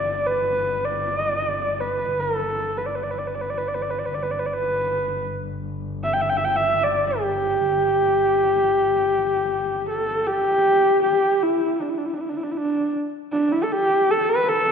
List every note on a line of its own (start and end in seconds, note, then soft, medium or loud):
0.00 4.11 G1 medium
0.00 0.28 D5 medium
0.26 0.86 B4 medium
0.84 1.82 D5 medium
1.80 2.21 B4 medium
2.20 2.79 A4 medium
2.77 2.88 B4 medium
2.86 2.96 D5 medium
2.95 3.05 B4 medium
3.03 3.12 D5 medium
3.11 3.20 B4 medium
3.18 3.28 D5 medium
3.27 3.36 B4 medium
3.35 3.42 D5 medium
3.41 3.51 B4 medium
3.50 3.59 D5 medium
3.58 3.69 B4 medium
3.68 3.76 D5 medium
3.74 3.83 B4 medium
3.82 3.92 D5 medium
3.90 4.00 B4 medium
3.99 4.07 D5 medium
4.06 4.16 B4 medium
4.12 10.34 G1 medium
4.12 4.24 D5 medium
4.23 4.32 B4 medium
4.31 4.40 D5 medium
4.39 4.48 B4 medium
4.46 4.55 D5 medium
4.54 5.26 B4 medium
6.03 6.15 E5 medium
6.13 6.22 G5 medium
6.21 6.31 E5 medium
6.29 6.39 G5 medium
6.37 6.46 E5 medium
6.45 6.57 G5 medium
6.56 6.85 E5 loud
6.83 7.22 D5 medium
7.20 9.86 G4 medium
9.90 10.28 A4 medium
10.27 11.02 G4 loud
11.03 11.44 G4 medium
11.43 11.82 E4 medium
11.81 11.91 D4 medium
11.89 11.99 E4 medium
11.98 12.07 D4 medium
12.05 12.15 E4 medium
12.14 12.22 D4 medium
12.21 12.31 E4 medium
12.29 12.38 D4 medium
12.37 12.45 E4 medium
12.43 12.53 D4 medium
12.51 12.59 E4 medium
12.57 12.93 D4 medium
13.32 13.54 D4 loud
13.52 13.65 E4 loud
13.63 13.73 A4 medium
13.72 14.12 G4 loud
14.11 14.31 A4 loud
14.29 14.50 B4 loud
14.49 14.72 A4 loud